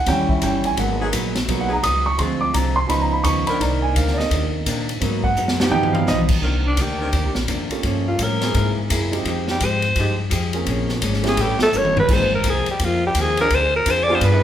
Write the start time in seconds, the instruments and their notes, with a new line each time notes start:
0.06 upright bass D#2, hollow-body jazz guitar D#3 G3 C#4 E4, upright piano E3 G3 C#4 G5, kick, snare, ride
0.29 upright piano E5, kick
0.42 upright bass G1, hollow-body jazz guitar D#3 G3 C#4 E4, upright piano G5, kick, hi-hat pedal, ride
0.64 upright piano G#5, ride
0.76 upright bass G#1, hollow-body jazz guitar G#2 F#3 B3 D#4, upright piano F#3 A#3 B3 F#5, kick, ride
0.99 saxophone section F#3 B3 D#4 G#4
1.12 upright bass A#1, hollow-body jazz guitar G#2 F#3 B3 D#4, kick, hi-hat pedal, ride
1.35 snare, ride
1.46 upright bass B1, hollow-body jazz guitar G#2 F#3 B3 D#4, upright piano F#3 A#3 B3, kick, ride
1.61 upright piano F#5
1.68 saxophone section F#3 B3 D#4 G#4
1.73 upright piano A#5
1.83 upright bass C#2, hollow-body jazz guitar G#2 F#3 B3 D#4, upright piano D#6, kick, hi-hat pedal, ride
2.06 upright piano C#6
2.18 upright bass D2, hollow-body jazz guitar D3 G#3, upright piano F3 G#3 C4 C6, kick, ride
2.22 hollow-body jazz guitar C4 F4
2.41 upright piano D6
2.54 upright bass C2, hollow-body jazz guitar D3 G#3 C4 F4, upright piano A#5, kick, hi-hat pedal, ride
2.76 upright piano C6
2.87 upright bass C#2, hollow-body jazz guitar C#3 F3 B3, upright piano F3 B3 D#4 B5, kick, ride
2.92 hollow-body jazz guitar D#4
3.01 upright piano A#5
3.13 upright piano B5
3.23 upright bass D#2, hollow-body jazz guitar C#3 F3 B3 D#4, upright piano C#6, kick, hi-hat pedal, ride
3.47 saxophone section D#3 C4 D4 A#4, upright piano B5, muted upright bass stroke, ride
3.59 upright bass C2, hollow-body jazz guitar C3 D#3 A#3 D4, upright piano A#3 D#4 D5 A#5, saxophone section A#3 C4 D#4 A#4, kick, ride
3.82 upright piano G#5
3.95 upright bass D2, hollow-body jazz guitar C3 D#3 A#3 D4, upright piano F5, kick, hi-hat pedal, ride
4.08 snare
4.13 upright piano D5
4.18 upright piano D#5, snare
4.30 upright bass D#2, hollow-body jazz guitar C3 D#3 A#3 D4, kick, ride
4.66 upright bass A#2, hollow-body jazz guitar C3 D#3 A#3 D4, kick, hi-hat pedal, ride
4.89 ride
5.01 upright bass G#2, hollow-body jazz guitar G#2 F#3 B3, upright piano F#3 A#3 B3, kick, ride
5.05 hollow-body jazz guitar D#4
5.23 upright piano F#5, kick
5.35 upright bass F#2, hollow-body jazz guitar G#2 F#3 B3 D#4, hi-hat pedal
5.48 snare
5.60 saxophone section F3 B3 D#4 G4, snare
5.71 upright bass G2, hollow-body jazz guitar G2 F3 B3, upright piano F3 B3 D#4 G5, high tom
5.75 hollow-body jazz guitar D#4
5.83 high tom
5.93 upright piano F5, high tom
6.07 upright bass B1, hollow-body jazz guitar G2 F3 B3 D#4, upright piano D#5, snare, hi-hat pedal
6.29 kick, crash
6.41 upright bass C2, hollow-body jazz guitar C3 D#3 A#3 D4, saxophone section D#3 C4 D4 A#4, kick
6.67 alto saxophone D4
6.76 upright bass D2, hollow-body jazz guitar C3 D#3 A#3 D4, kick, hi-hat pedal, ride
6.82 alto saxophone G4
7.00 saxophone section D#3 C4 D4 A#4
7.12 upright bass D#2, hollow-body jazz guitar C3 D#3 A#3 D4, kick, ride
7.24 upright bass C2
7.35 upright bass A#1, snare
7.48 upright bass F2, hollow-body jazz guitar C3 D#3 A#3 D4, kick, hi-hat pedal, ride
7.69 upright piano A#3 C#4 F4 G4 A4, muted upright bass stroke, ride
7.82 hollow-body jazz guitar G2 F3 A#3 C#4, upright bass G2, kick, ride
8.08 alto saxophone F4
8.19 hollow-body jazz guitar G2 F3 A#3 C#4, upright bass A2, kick, hi-hat pedal, ride
8.23 alto saxophone A#4
8.41 saxophone section E3 A#3 C4 G#4, snare, ride
8.54 upright bass G#2, hollow-body jazz guitar C3 A#3 E4 G#4, kick, ride
8.89 upright bass F#2, hollow-body jazz guitar C3 A#3 E4 G#4, kick, hi-hat pedal, ride
9.12 upright piano G#3 C4 D#4 F4 G4, ride
9.25 upright bass F2, hollow-body jazz guitar F3 G#3 D#4 G4, kick, ride
9.48 alto saxophone G4, snare
9.60 upright bass G#2, hollow-body jazz guitar F3 G#3 D#4 G4, kick, hi-hat pedal, ride
9.65 alto saxophone C5
9.82 ride
9.96 upright bass G2, hollow-body jazz guitar F3 G#3 D#4 G4, saxophone section F3 D#4 G4, kick, ride
10.00 saxophone section G#3
10.30 upright bass F2, hollow-body jazz guitar F3 G#3 D#4 G4, kick, hi-hat pedal, ride
10.53 upright piano A#3 C4 C#4 F4 G#4, ride
10.66 upright bass A#1, hollow-body jazz guitar A#2 F3 G#3 C#4, kick, ride
10.89 snare
11.02 upright bass G#1, hollow-body jazz guitar A#2 F3 G#3 C#4, kick, hi-hat pedal, ride
11.14 snare
11.22 upright piano A3 B3 C#4 E4 G4, snare, ride
11.28 alto saxophone G#4
11.37 upright bass A1, hollow-body jazz guitar A2 G3, saxophone section G3 B3 C#4 A4, kick, ride
11.41 hollow-body jazz guitar B3 C#4, alto saxophone G4
11.59 alto saxophone A4, muted upright bass stroke, snare
11.72 upright bass F#1, hollow-body jazz guitar A2 G3 B3 C#4, hi-hat pedal
11.78 alto saxophone C#5
11.85 high tom
11.97 alto saxophone B4, floor tom
12.08 upright bass G#1, hollow-body jazz guitar G#2 F3 A#3 C4, upright piano A#3 C4 D#4 F4 G#4, kick, crash
12.14 alto saxophone C5
12.35 alto saxophone A#4
12.44 upright bass C2, hollow-body jazz guitar G#2 F3 A#3 C4, kick, hi-hat pedal, ride
12.50 alto saxophone G#4
12.66 muted upright bass stroke, ride
12.71 alto saxophone G4
12.79 upright bass F2, hollow-body jazz guitar G#2 F3 A#3 C4, kick, ride
12.85 alto saxophone F4
13.07 alto saxophone G4
13.15 upright bass D#2, hollow-body jazz guitar G#2 F3 A#3 C4, kick, hi-hat pedal, ride
13.22 alto saxophone G#4
13.37 saxophone section F3 C4 D4 G#4, alto saxophone A#4, ride
13.50 upright bass D2, hollow-body jazz guitar D3 C4 F4, kick, ride
13.54 hollow-body jazz guitar G#4, alto saxophone C5
13.76 alto saxophone A#4
13.86 upright bass F2, hollow-body jazz guitar D3 C4 F4 G#4, kick, hi-hat pedal, ride
13.90 alto saxophone C5
14.03 alto saxophone D5
14.08 saxophone section F3 B3 F4, upright piano B3 D4 F4 G4 G#4
14.15 alto saxophone C5
14.21 upright bass G2, hollow-body jazz guitar G3 B3 F4 G#4, alto saxophone B4, kick, ride